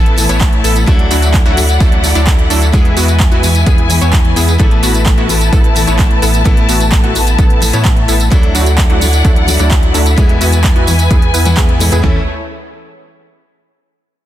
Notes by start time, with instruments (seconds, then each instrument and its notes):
Already playing: sub bass A1, steel-string acoustic guitar A2 E3 A3 B3 E4, supersaw synth B3 E4 A4, string section E4 B4 A5
0.06 closed hi-hat
0.16 steel-string acoustic guitar A2 E3 A3 B3 E4, open hi-hat, tambourine
0.29 sub bass A1, supersaw synth B3 E4 C#5, closed hi-hat, tambourine
0.41 kick, clap, closed hi-hat
0.53 closed hi-hat
0.64 sub bass A1, supersaw synth B3 E4 A4, open hi-hat, tambourine
0.76 closed hi-hat, tambourine
0.86 sub bass D2, steel-string acoustic guitar F#3 A3 D4 E4, supersaw synth F#3 A3 D4 E4 A4, string section D5 F#5, kick, closed hi-hat, tambourine
0.99 closed hi-hat
1.11 sub bass D2, supersaw synth F#3 A3 D4 E4 F#4, open hi-hat, tambourine
1.22 closed hi-hat, tambourine
1.34 kick, clap, closed hi-hat, tambourine
1.46 sub bass D2, supersaw synth F#3 A3 D4 E4 F#4, closed hi-hat
1.57 steel-string acoustic guitar F#3 A3 D4 E4, open hi-hat, tambourine
1.69 closed hi-hat, tambourine
1.80 sub bass D2, supersaw synth F#3 A3 D4 E4 A4, kick, closed hi-hat, tambourine
1.92 closed hi-hat
2.03 steel-string acoustic guitar F#3 A3 D4 E4, open hi-hat, tambourine
2.15 sub bass D2, supersaw synth F#3 A3 D4 E4 D5, closed hi-hat, tambourine
2.27 kick, clap, closed hi-hat, tambourine
2.39 closed hi-hat
2.50 sub bass D2, supersaw synth F#3 A3 D4 E4 A4, open hi-hat, tambourine
2.62 closed hi-hat, tambourine
2.72 sub bass E2, steel-string acoustic guitar E3 G#3 B3 E4, supersaw synth B3 E4 G#4, string section B4 G#5, kick, closed hi-hat, tambourine
2.85 closed hi-hat
2.97 sub bass E2, supersaw synth B3 E4 F#4, open hi-hat, tambourine
3.08 closed hi-hat, tambourine
3.20 kick, clap, closed hi-hat, tambourine
3.32 sub bass E2, supersaw synth B3 E4 F#4, closed hi-hat
3.43 steel-string acoustic guitar E3 G#3 B3 E4, open hi-hat, tambourine
3.55 closed hi-hat, tambourine
3.66 sub bass E2, supersaw synth B3 E4 G#4, kick, closed hi-hat, tambourine
3.78 closed hi-hat
3.89 steel-string acoustic guitar E3 G#3 B3 E4, open hi-hat, tambourine
4.01 sub bass E2, supersaw synth B3 E4 C#5, closed hi-hat, tambourine
4.13 kick, clap, closed hi-hat, tambourine
4.25 closed hi-hat
4.36 sub bass E2, supersaw synth B3 E4 G#4, open hi-hat, tambourine
4.48 closed hi-hat, tambourine
4.58 sub bass A1, steel-string acoustic guitar A2 E3 A3 B3 E4, supersaw synth B3 E4 A4, string section A5, kick, closed hi-hat, tambourine
4.71 closed hi-hat
4.83 sub bass A1, supersaw synth B3 E4 F#4, open hi-hat, tambourine
4.94 closed hi-hat, tambourine
5.06 kick, clap, closed hi-hat, tambourine
5.18 sub bass A1, supersaw synth B3 E4 F#4, closed hi-hat
5.28 steel-string acoustic guitar A2 E3 A3 B3 E4, open hi-hat, tambourine
5.41 closed hi-hat, tambourine
5.53 sub bass A1, supersaw synth B3 E4 A4, kick, closed hi-hat, tambourine
5.64 closed hi-hat
5.75 steel-string acoustic guitar A2 E3 A3 B3 E4, open hi-hat, tambourine
5.87 sub bass A1, supersaw synth B3 E4 C#5, closed hi-hat, tambourine
5.99 kick, clap, closed hi-hat, tambourine
6.11 closed hi-hat
6.22 sub bass A1, supersaw synth B3 E4 A4, open hi-hat, tambourine
6.34 closed hi-hat, tambourine
6.44 sub bass A1, steel-string acoustic guitar A2 E3 A3 B3 E4, supersaw synth B3 E4 A4, kick, closed hi-hat, tambourine
6.57 closed hi-hat
6.69 sub bass A1, supersaw synth B3 E4 F#4, open hi-hat, tambourine
6.80 closed hi-hat, tambourine
6.92 kick, clap, closed hi-hat, tambourine
7.04 sub bass A1, supersaw synth B3 E4 F#4, closed hi-hat
7.15 steel-string acoustic guitar A2 E3 A3 B3 E4, open hi-hat, tambourine
7.27 closed hi-hat, tambourine
7.39 sub bass A1, supersaw synth B3 E4 A4, kick, closed hi-hat, tambourine
7.50 closed hi-hat
7.61 steel-string acoustic guitar A2 E3 A3 B3 E4, open hi-hat, tambourine
7.73 sub bass A2, supersaw synth B3 E4 C#5, closed hi-hat, tambourine
7.85 kick, clap, closed hi-hat, tambourine
7.97 closed hi-hat
8.08 sub bass A1, supersaw synth B3 E4 A4, open hi-hat, tambourine
8.20 closed hi-hat, tambourine
8.30 sub bass D2, steel-string acoustic guitar F#3 A3 D4 E4, supersaw synth F#3 A3 D4 E4 A4, string section E4 D5 F#5, kick, closed hi-hat, tambourine
8.43 closed hi-hat
8.55 sub bass D2, supersaw synth F#3 A3 D4 E4 F#4, open hi-hat, tambourine
8.66 closed hi-hat, tambourine
8.78 kick, clap, closed hi-hat, tambourine
8.90 sub bass D2, supersaw synth F#3 A3 D4 E4 F#4, closed hi-hat
9.01 steel-string acoustic guitar F#3 A3 D4 E4, open hi-hat, tambourine
9.13 closed hi-hat, tambourine
9.25 sub bass D2, supersaw synth F#3 A3 D4 E4 A4, kick, closed hi-hat, tambourine
9.36 closed hi-hat
9.47 steel-string acoustic guitar F#3 A3 D4 E4, open hi-hat, tambourine
9.59 sub bass D2, supersaw synth F#3 A3 D4 E4 D5, closed hi-hat, tambourine
9.71 kick, clap, closed hi-hat, tambourine
9.83 closed hi-hat
9.94 sub bass D2, supersaw synth F#3 A3 D4 E4 A4, open hi-hat, tambourine
10.06 closed hi-hat, tambourine
10.16 sub bass E2, steel-string acoustic guitar E3 G#3 B3 E4, supersaw synth B3 E4 G#4, string section B4 G#5, kick, closed hi-hat, tambourine
10.29 closed hi-hat
10.41 sub bass E2, supersaw synth B3 E4 F#4, open hi-hat, tambourine
10.52 closed hi-hat, tambourine
10.64 kick, clap, closed hi-hat, tambourine
10.76 sub bass E2, supersaw synth B3 E4 F#4, closed hi-hat
10.87 steel-string acoustic guitar E3 G#3 B3 E4, open hi-hat, tambourine
10.99 closed hi-hat, tambourine
11.11 sub bass E2, supersaw synth B3 E4 G#4, kick, closed hi-hat, tambourine
11.22 closed hi-hat
11.34 sub bass E2, supersaw synth B3 E4 B4, open hi-hat, tambourine
11.45 steel-string acoustic guitar E3 G#3 B3 E4, closed hi-hat, tambourine
11.57 sub bass E2, supersaw synth B3 E4 G#4, kick, clap, closed hi-hat, tambourine
11.69 closed hi-hat
11.80 steel-string acoustic guitar A2 E3 G#3 B3 E4, open hi-hat, tambourine
11.92 sub bass E2, supersaw synth B3 E4 G#4, closed hi-hat, tambourine
12.02 sub bass A1, steel-string acoustic guitar E3 A3 C#4 E4, string section A3 E4 C#5, supersaw synth C#4 E4 A4, kick, floor tom